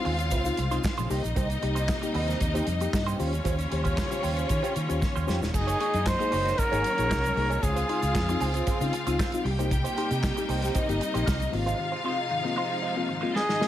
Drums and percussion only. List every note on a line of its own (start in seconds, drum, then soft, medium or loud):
0.05 open hi-hat medium
0.19 closed hi-hat medium
0.19 shaker soft
0.31 kick loud
0.31 closed hi-hat medium
0.31 shaker medium
0.45 closed hi-hat medium
0.45 shaker medium
0.57 closed hi-hat medium
0.57 shaker soft
0.71 closed hi-hat soft
0.71 shaker medium
0.84 kick loud
0.84 snare loud
0.84 clap medium
0.84 shaker medium
0.97 closed hi-hat soft
0.97 shaker soft
1.10 open hi-hat medium
1.10 shaker medium
1.24 closed hi-hat soft
1.24 shaker soft
1.36 kick loud
1.36 closed hi-hat medium
1.36 shaker medium
1.50 closed hi-hat soft
1.50 shaker medium
1.63 closed hi-hat medium
1.76 closed hi-hat soft
1.76 shaker medium
1.89 kick loud
1.89 snare loud
1.89 clap medium
1.89 shaker medium
2.03 closed hi-hat soft
2.03 shaker soft
2.14 open hi-hat medium
2.28 snare soft
2.28 closed hi-hat medium
2.28 shaker soft
2.40 kick loud
2.40 closed hi-hat medium
2.40 shaker medium
2.55 closed hi-hat soft
2.55 shaker medium
2.67 closed hi-hat medium
2.67 shaker soft
2.80 closed hi-hat soft
2.80 shaker medium
2.93 kick loud
2.93 snare loud
2.93 clap medium
2.93 shaker medium
3.06 closed hi-hat soft
3.06 shaker soft
3.20 open hi-hat medium
3.20 shaker soft
3.33 closed hi-hat soft
3.33 shaker soft
3.45 kick medium
3.45 closed hi-hat medium
3.45 shaker medium
3.59 closed hi-hat soft
3.59 shaker medium
3.72 closed hi-hat medium
3.85 kick medium
3.85 closed hi-hat soft
3.85 shaker medium
3.98 kick loud
3.98 snare loud
3.98 clap medium
3.98 shaker medium
4.12 closed hi-hat soft
4.12 shaker medium
4.23 open hi-hat medium
4.23 shaker medium
4.37 closed hi-hat soft
4.37 shaker soft
4.49 kick loud
4.49 closed hi-hat medium
4.49 shaker medium
4.64 closed hi-hat medium
4.64 shaker medium
4.76 closed hi-hat medium
4.76 shaker soft
4.90 closed hi-hat soft
4.90 shaker medium
5.02 kick loud
5.02 snare medium
5.02 shaker medium
5.16 shaker medium
5.28 snare medium
5.28 shaker medium
5.42 snare medium
5.42 shaker soft
5.54 kick medium
5.54 crash medium
5.54 shaker medium
5.68 closed hi-hat soft
5.68 shaker medium
5.80 closed hi-hat medium
5.94 closed hi-hat soft
5.94 shaker medium
6.06 kick loud
6.06 snare loud
6.06 clap medium
6.06 shaker medium
6.20 closed hi-hat soft
6.20 shaker medium
6.32 open hi-hat medium
6.32 shaker medium
6.45 snare soft
6.45 closed hi-hat soft
6.45 shaker soft
6.58 kick loud
6.58 closed hi-hat medium
6.58 shaker medium
6.73 closed hi-hat medium
6.73 shaker medium
6.84 closed hi-hat medium
6.84 shaker soft
6.98 closed hi-hat medium
6.98 shaker medium
7.11 kick loud
7.11 snare loud
7.11 clap medium
7.11 shaker medium
7.24 closed hi-hat medium
7.24 shaker medium
7.37 open hi-hat medium
7.51 closed hi-hat soft
7.51 shaker soft
7.63 kick loud
7.63 closed hi-hat medium
7.63 shaker medium
7.76 closed hi-hat medium
7.76 shaker medium
7.89 closed hi-hat medium
8.02 closed hi-hat soft
8.02 shaker soft
8.15 kick loud
8.15 snare loud
8.15 clap medium
8.15 shaker medium
8.29 closed hi-hat soft
8.29 shaker medium
8.40 open hi-hat medium
8.40 shaker medium
8.54 closed hi-hat medium
8.54 shaker soft
8.67 kick loud
8.67 closed hi-hat medium
8.67 shaker medium
8.81 closed hi-hat soft
8.81 shaker medium
8.93 closed hi-hat medium
8.93 shaker medium
9.07 closed hi-hat soft
9.07 shaker medium
9.19 kick loud
9.19 snare loud
9.19 clap medium
9.19 shaker medium
9.32 closed hi-hat medium
9.32 shaker medium
9.46 open hi-hat medium
9.59 closed hi-hat soft
9.59 shaker soft
9.71 kick loud
9.71 closed hi-hat medium
9.71 shaker medium
9.85 closed hi-hat soft
9.85 shaker medium
9.98 closed hi-hat medium
10.11 closed hi-hat soft
10.11 shaker medium
10.23 kick loud
10.23 snare loud
10.23 clap loud
10.23 shaker medium
10.37 closed hi-hat soft
10.37 shaker medium
10.49 open hi-hat medium
10.49 shaker medium
10.62 snare soft
10.62 closed hi-hat soft
10.62 shaker soft
10.75 kick loud
10.75 closed hi-hat medium
10.75 shaker medium
10.89 closed hi-hat soft
10.89 shaker medium
11.01 closed hi-hat medium
11.01 shaker soft
11.15 closed hi-hat soft
11.15 shaker medium
11.27 kick loud
11.27 snare loud
11.27 clap medium
11.27 shaker medium
11.40 closed hi-hat soft
11.40 shaker medium
11.53 open hi-hat medium
11.67 closed hi-hat soft
11.67 shaker soft
13.36 snare medium
13.49 snare medium
13.61 snare medium